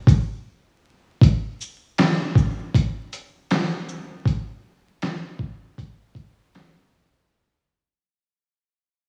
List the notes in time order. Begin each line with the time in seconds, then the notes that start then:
0.07 kick, closed hi-hat, shaker
1.21 kick, closed hi-hat
1.61 shaker
1.98 snare, clap, closed hi-hat
2.35 kick, shaker
2.74 kick, closed hi-hat
3.13 closed hi-hat, shaker
3.51 snare, clap, closed hi-hat
3.89 shaker
4.25 kick, closed hi-hat
5.02 snare, clap, closed hi-hat
5.39 kick
5.78 kick, closed hi-hat
6.15 kick, closed hi-hat
6.55 snare, clap, closed hi-hat